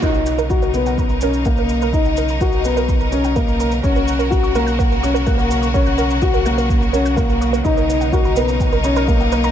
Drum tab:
SH |xxxxxxxxxxxxxxxx|xxxxxxxxxxxxxxxx|xxxxxxxxxxxxxxxx|xxxxxxxxxxxxxxxx|
BD |o---o---o---o---|o---o---o---o---|o---o---o---o---|o---o---o---o---|

SH |xxxxxxxxxxxxxxxx|
BD |o---o---o---o---|